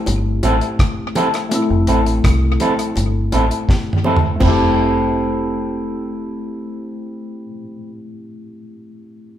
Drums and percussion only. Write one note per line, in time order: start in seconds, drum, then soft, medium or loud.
0.06 closed hi-hat medium
0.06 high bongo medium
0.43 closed hi-hat medium
0.43 high bongo medium
0.61 closed hi-hat soft
0.79 kick loud
0.79 cross-stick loud
0.79 closed hi-hat medium
1.15 closed hi-hat medium
1.15 low bongo medium
1.34 cross-stick medium
1.34 closed hi-hat soft
1.51 closed hi-hat medium
1.51 high bongo medium
1.87 closed hi-hat medium
2.06 closed hi-hat soft
2.24 kick loud
2.24 cross-stick loud
2.24 closed hi-hat loud
2.60 closed hi-hat medium
2.60 low bongo medium
2.79 closed hi-hat medium
2.96 closed hi-hat medium
2.96 high bongo soft
3.32 closed hi-hat medium
3.32 high bongo medium
3.51 closed hi-hat soft
3.69 kick loud
3.69 snare medium
3.93 mid tom medium
4.04 low bongo medium
4.16 floor tom medium
4.40 kick medium
4.40 floor tom medium
4.40 crash medium
4.40 high bongo medium